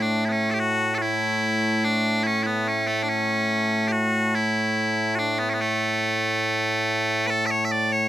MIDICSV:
0, 0, Header, 1, 2, 480
1, 0, Start_track
1, 0, Key_signature, 3, "major"
1, 0, Tempo, 833333
1, 359, Time_signature, 2, 2, 24, 8
1, 4657, End_track
2, 0, Start_track
2, 0, Title_t, "Bagpipes"
2, 0, Program_c, 0, 109
2, 0, Note_on_c, 0, 45, 89
2, 0, Note_on_c, 0, 57, 89
2, 12, Note_on_c, 0, 62, 68
2, 144, Note_off_c, 0, 62, 0
2, 144, Note_on_c, 0, 64, 59
2, 167, Note_off_c, 0, 64, 0
2, 167, Note_on_c, 0, 59, 59
2, 182, Note_off_c, 0, 59, 0
2, 182, Note_on_c, 0, 61, 84
2, 292, Note_off_c, 0, 61, 0
2, 292, Note_on_c, 0, 69, 76
2, 312, Note_off_c, 0, 69, 0
2, 312, Note_on_c, 0, 67, 76
2, 342, Note_off_c, 0, 67, 0
2, 342, Note_on_c, 0, 66, 108
2, 544, Note_off_c, 0, 66, 0
2, 544, Note_on_c, 0, 69, 70
2, 564, Note_off_c, 0, 69, 0
2, 564, Note_on_c, 0, 66, 70
2, 586, Note_off_c, 0, 66, 0
2, 586, Note_on_c, 0, 64, 102
2, 1062, Note_off_c, 0, 64, 0
2, 1062, Note_on_c, 0, 62, 85
2, 1286, Note_off_c, 0, 62, 0
2, 1286, Note_on_c, 0, 64, 95
2, 1306, Note_off_c, 0, 64, 0
2, 1306, Note_on_c, 0, 61, 95
2, 1401, Note_off_c, 0, 61, 0
2, 1401, Note_on_c, 0, 64, 76
2, 1420, Note_off_c, 0, 64, 0
2, 1420, Note_on_c, 0, 59, 76
2, 1545, Note_off_c, 0, 59, 0
2, 1545, Note_on_c, 0, 61, 81
2, 1654, Note_off_c, 0, 57, 0
2, 1654, Note_off_c, 0, 61, 0
2, 1654, Note_on_c, 0, 57, 79
2, 1746, Note_off_c, 0, 57, 0
2, 1746, Note_on_c, 0, 62, 61
2, 1780, Note_off_c, 0, 62, 0
2, 1780, Note_on_c, 0, 61, 97
2, 2234, Note_off_c, 0, 61, 0
2, 2234, Note_on_c, 0, 67, 73
2, 2257, Note_off_c, 0, 67, 0
2, 2257, Note_on_c, 0, 66, 104
2, 2505, Note_off_c, 0, 66, 0
2, 2505, Note_on_c, 0, 64, 90
2, 2968, Note_off_c, 0, 64, 0
2, 2968, Note_on_c, 0, 66, 78
2, 2989, Note_off_c, 0, 66, 0
2, 2989, Note_on_c, 0, 62, 78
2, 3104, Note_off_c, 0, 62, 0
2, 3104, Note_on_c, 0, 59, 85
2, 3167, Note_off_c, 0, 59, 0
2, 3167, Note_on_c, 0, 61, 68
2, 3190, Note_off_c, 0, 61, 0
2, 3190, Note_on_c, 0, 59, 68
2, 3230, Note_off_c, 0, 59, 0
2, 3230, Note_on_c, 0, 57, 82
2, 4186, Note_off_c, 0, 57, 0
2, 4186, Note_on_c, 0, 71, 92
2, 4205, Note_off_c, 0, 71, 0
2, 4205, Note_on_c, 0, 69, 92
2, 4299, Note_off_c, 0, 69, 0
2, 4299, Note_on_c, 0, 76, 85
2, 4324, Note_off_c, 0, 76, 0
2, 4324, Note_on_c, 0, 73, 85
2, 4406, Note_off_c, 0, 73, 0
2, 4406, Note_on_c, 0, 76, 70
2, 4445, Note_off_c, 0, 76, 0
2, 4445, Note_on_c, 0, 74, 97
2, 4562, Note_off_c, 0, 74, 0
2, 4562, Note_on_c, 0, 73, 78
2, 4657, Note_off_c, 0, 45, 0
2, 4657, Note_off_c, 0, 73, 0
2, 4657, End_track
0, 0, End_of_file